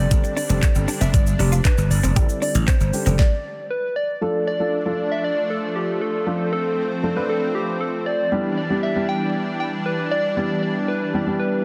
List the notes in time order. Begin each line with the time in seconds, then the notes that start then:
Already playing: G3 C4 D5
0.11 G1 D3 G3 C4 D4 G4, kick, closed hi-hat, shaker
0.24 muted clean electric guitar stroke, shaker
0.37 D4 D5, open hi-hat, shaker
0.49 F1 D3 G3 C4 D4 G4, shaker
0.62 muted clean electric guitar stroke, kick, clap, closed hi-hat, shaker
0.75 G1 D3 G3 C4 D4 G4, shaker
0.88 D4, open hi-hat, shaker
1.01 F1 C4 E5, shaker
1.14 G1 D5, muted clean electric guitar stroke, kick, closed hi-hat, shaker
1.27 shaker
1.39 F1 D4 G4, open hi-hat, shaker
1.52 F4, shaker
1.65 D4 B4, kick, clap, closed hi-hat, shaker
1.78 G1, muted clean electric guitar stroke, shaker
1.91 G1 D5, open hi-hat, shaker
2.03 F1 C4, shaker
2.16 G1 D3 G3 C4 D4 E4 G4, kick, closed hi-hat, shaker
2.29 muted clean electric guitar stroke, shaker
2.42 D4 D5, open hi-hat, shaker
2.55 A1, shaker
2.68 C4 C5, kick, clap, closed hi-hat, shaker
2.80 G1, muted clean electric guitar stroke, shaker
2.93 D3 G3 C4 D4 G4, open hi-hat, shaker
3.06 F1 D3 G3 C4 D4 G4, shaker
3.19 D5, kick, snare
3.70 B4
3.96 D5
4.21 F3 A3 D4 F4 A4
4.47 D5
4.60 F3 A3 D4 F4 A4
4.85 F3 A3 D4 F4 A4
5.12 E5
5.24 D5
5.50 A4
5.76 G4
6.01 A4
6.26 F3 A3 C4 D4 F4 A4
6.53 A4
7.03 F3 A3 D4 F4 A4
7.16 F3 A3 D4 F4 B4
7.29 A4
7.55 G4
7.81 A4
8.06 D5
8.32 E3 G3 B3 D4 E4 G4
8.57 D5
8.70 G3 B3 D4 E4 G4
8.83 E5
8.96 G3 B3 D4 E4 G4
9.09 G5
9.60 G5
9.86 B4
10.11 D5
10.37 G3 B3 D4 E4 G4
10.63 D5
10.88 B4
11.14 G3 B3 D4 E4 G4
11.26 G3 B3 D4 E4 G4
11.39 B4